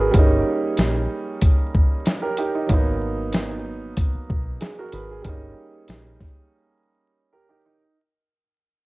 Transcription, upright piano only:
Already playing: B3 D#4 F#4 A#4 B4
0.00 G#4
0.11 G3 A#3
0.16 C#4 D#4
2.22 G4 A#4
2.38 D#4 G4
2.55 D#4
2.67 F#3 A#3
2.71 B3 D#4
4.61 G#4
4.78 F#4 A#4
4.93 G#4 B4
5.11 G#4
5.22 G3 A#3
5.27 C#4 D#4
7.33 G4 A#4
7.49 D#4 G4
7.66 D#4

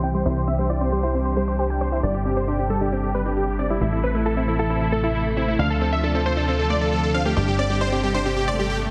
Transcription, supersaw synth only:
0.03 G5
0.14 C5
0.25 C5
0.37 C5
0.48 E5
0.59 C5
0.70 D5
0.81 C5
0.92 C5
1.03 C5
1.14 C5
1.25 C5
1.37 C5
1.48 C5
1.59 C5
1.81 C5
1.92 C5
2.03 D5
2.14 G4
2.26 G4
2.37 C5
2.48 G4
2.59 G4
2.70 A4
2.81 G4
2.92 G4
3.03 G4
3.15 B4
3.26 G4
3.37 G4
3.48 G4
3.59 D5
3.70 E4
3.81 E4
3.93 E4
4.04 B4
4.15 E4
4.26 A4
4.37 E4
4.48 E4
4.59 A4
4.70 E4
4.81 E4
4.92 A4
5.04 E4
5.15 E4
5.37 E4
5.48 E4
5.59 F5
5.70 A4
5.81 A4
5.93 E5
6.04 A4
6.15 A4
6.26 C5
6.37 A4
6.48 A4
6.59 A4
6.70 D5
6.81 A4
6.92 A4
7.03 A4
7.14 F5
7.25 G4
7.37 G4
7.48 G4
7.59 D5
7.70 G4
7.81 C5
7.92 G4
8.03 G4
8.14 C5
8.25 G4
8.37 G4
8.48 D5
8.59 G4
8.70 G4

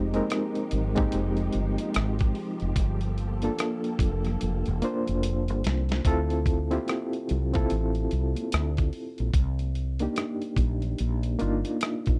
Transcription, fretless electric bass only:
Already playing: F1
0.73 G#1
1.14 F1
1.55 G1
1.96 G#1
2.62 F1
2.77 G1
4.00 F1
4.42 F1
4.68 E1
5.09 F1
5.50 G1
5.66 C2
6.06 D2
7.31 C2
7.72 A1
8.12 C2
8.54 D2
9.20 A#1
9.35 C2
10.58 A#1
11.00 A#1
11.42 G1
12.08 A#1

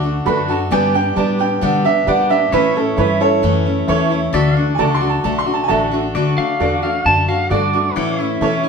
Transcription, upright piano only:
Already playing: D6
0.26 B5
0.50 A5
0.72 G#5
0.95 G5
1.17 A5
1.40 G5
1.63 F#5
1.85 E5
2.08 F#5
2.30 E5
2.54 B4
2.77 A4
2.99 B4
3.21 A4 C#5
4.75 G#5
4.79 A5
4.94 C6
5.10 A5
5.24 A5
5.38 C6
5.54 A5
5.64 G#5
5.68 A5

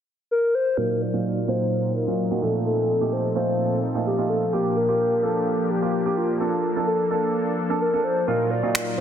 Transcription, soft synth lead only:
0.31 A#4
0.55 C5
0.79 A#4
1.02 D5
1.49 C5
1.96 A#4
2.43 A4
2.66 A4
3.13 C5
3.36 C5
4.06 G4
4.30 A4
4.53 G4
4.77 A#4
5.24 A4
5.71 G4
6.17 F4
6.41 F4
6.87 A4
7.11 A4
7.81 A#4
8.04 C5
8.27 A#4
8.51 D5

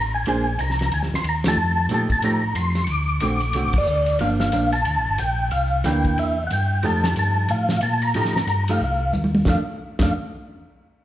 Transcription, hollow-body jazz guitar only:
0.27 A#3 D4 G#4 C5
1.45 F3 A3 D#4 G4
1.91 F3 A3 D#4 G4
2.24 F3 A3 D#4 G4
3.22 D3 A3 C4 F#4
3.54 D3 A3 C4 F#4
4.21 F3 A#3 D4
4.52 F3 A#3 D4
5.85 E3 A#3 D4
6.83 F3 A3 D#4 G4
8.15 F3 A3 D#4 G4
8.69 F3 A3 D#4 G4
9.47 D#3 A3 D4
10.00 D#3 A3 D4

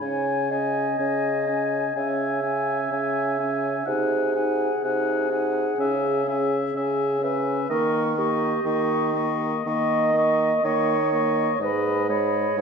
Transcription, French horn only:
0.02 C#4
0.51 C#4
1.00 C#4
1.49 C#4
1.96 C#4
2.44 C#4
2.93 C#4
3.40 C#4
3.87 D#4
4.36 D#4
4.83 D#4
5.30 D#4
5.78 C#4
6.27 C#4
6.74 C#4
7.21 C#4
7.70 A#3
8.18 A#3
8.64 A#3
9.15 A#3
9.66 A#3
10.14 A#3
10.63 A#3
11.12 A#3
11.61 G#3
12.09 G#3

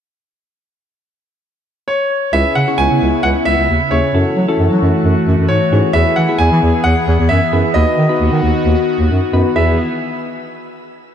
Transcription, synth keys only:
2.34 C#4 E4 G#4 B4
2.68 C#4 E4 G#4 C#5
3.92 C#4 E4 G#4 C#5
4.14 C#4 E4 F#4 A4
4.48 C#4 E4 F#4 A4
5.72 C#4 E4 F#4 G#4
5.95 B3 E4 G#4 B4
6.29 B3 E4 G#4 B4
7.53 B3 E4 G#4 B4
7.75 B3 D#4 F#4 B4
8.09 B3 D#4 F#4 B4
9.33 B3 D#4 F#4 B4
9.56 B3 E4 G#4 B4

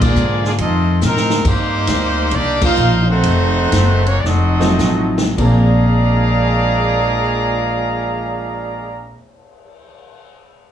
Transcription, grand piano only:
4.59 F3 F#3 A3 C4 D#4
5.37 A#2 A#3 C4 D4 G#4

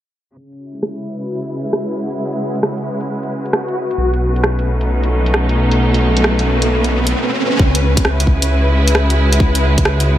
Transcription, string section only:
0.36 C#3
0.67 E4
0.73 G#3
1.11 B4
3.99 B2
4.15 C#4
4.25 A3
4.71 D#4
7.59 C#3
7.85 G#3
8.03 E4

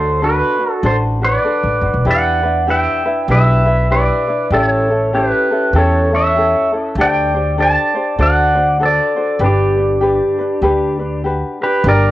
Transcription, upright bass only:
Already playing: D2
0.83 A1
1.64 A1
1.81 F#1
1.94 E1
2.05 E2
3.28 B1
4.51 A1
5.73 E2
6.95 D2
8.19 D2
9.39 G1
10.62 D2
11.84 G1

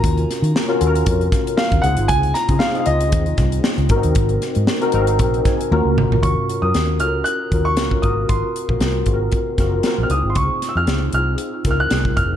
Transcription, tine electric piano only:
Already playing: C#4 F4 F#4 A#4
0.68 C#4 F4 F#4 A#4
0.79 C#4 F4 F#4 A4
0.87 A#4
1.83 C4 D#4 F4 G#4
2.49 C4 D#4 F4 G#4
2.74 C4 D#4 F4 G#4
3.90 B3 D#4 F#4 A#4
3.96 C4
4.81 C4 D#4 F#4 A#4
4.93 C4 D#4 F#4 A#4
5.46 G#5
5.71 C#4 F4 F#4 A#4 A#5
6.23 C#4 F4 F#4 A#4
6.63 C#4 F4 F#4 A#4
7.00 C#4 F4 F#4 A4
7.07 A#4
7.52 C#4 F4 F#4 A#4
7.79 C#4 F4 F#4 A#4
8.03 B3 F4 F#4 A#4
8.09 C4
8.69 C4 F4 F#4 A#4
9.07 C4 F4 F#4 G#4
9.14 A#4
9.59 C4 F4 F#4 A#4
9.85 C4 F4 F#4 A#4
10.11 C4 D#4 E4 G#4
10.18 F4
10.76 C4 D#4 F4 G#4
11.14 C4 D#4 F4 G#4
11.65 C4 D#4 F4 A#4
11.91 C4 D#4 F4 G#4

